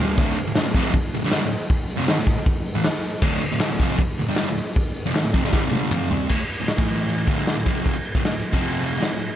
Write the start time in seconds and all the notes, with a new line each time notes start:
Already playing: G2
0.00 D3 G3
0.17 D2 A2 D3, kick, open hi-hat
0.36 muted distorted electric guitar stroke, open hi-hat
0.47 D2 A2
0.55 G2 D3, snare, open hi-hat
0.66 D2 A2
0.73 F2 C3 F3, kick, open hi-hat
0.93 muted distorted electric guitar stroke, kick, open hi-hat
1.13 D2 A2, open hi-hat
1.24 G2 D3 G3
1.31 snare, open hi-hat
1.42 D2 A2
1.51 open hi-hat
1.70 kick, open hi-hat
1.89 open hi-hat
1.97 F2 C3
2.08 G#2 D#3, snare, open hi-hat
2.18 D2 A2
2.27 kick, open hi-hat
2.38 muted distorted electric guitar stroke
2.46 kick, open hi-hat
2.66 open hi-hat
2.75 A2 E3
2.84 muted distorted electric guitar stroke, snare, open hi-hat
3.03 open hi-hat
3.22 D2 A2 D3, kick, crash
3.42 muted distorted electric guitar stroke, open hi-hat
3.52 D2 A2
3.60 G2 D3, snare, clap, open hi-hat
3.72 D2 A2
3.80 F2 C3 F3, kick, open hi-hat
3.98 muted distorted electric guitar stroke, kick, open hi-hat
4.18 D2 A2, open hi-hat
4.29 G2 D3 G3
4.36 snare, clap, open hi-hat
4.48 D2 A2
4.56 open hi-hat
4.76 kick, open hi-hat
4.96 open hi-hat
5.06 F2 C3
5.13 G#2 D#3, snare, clap, open hi-hat
5.24 D2 A2
5.34 F2 C3, kick, open hi-hat
5.44 G2 D3 G3
5.53 kick, snare
5.63 F2 C3
5.71 G2 D3 G3, high tom
5.91 F2 C3 F3, clap, mid tom
6.11 C3 G3 C4, floor tom
6.28 D2 A2, kick, crash
6.38 muted distorted electric guitar stroke, snare
6.48 crash
6.60 D2 A2
6.68 muted distorted electric guitar stroke, snare, crash
6.77 A2 E3 A3, kick
6.88 crash
7.09 crash
7.27 D2 A2 D3, kick, crash
7.38 snare
7.47 snare, crash
7.56 D2 A2
7.66 F2 C3 F3, kick, crash
7.86 kick, crash
7.96 muted distorted electric guitar stroke
8.05 crash
8.15 D2 A2, kick
8.25 D2 A2, snare, crash
8.44 crash
8.52 F2 C3 F3, kick
8.62 crash
8.83 crash
8.94 snare
9.01 G2 D3, snare, crash
9.11 D2 A2
9.22 crash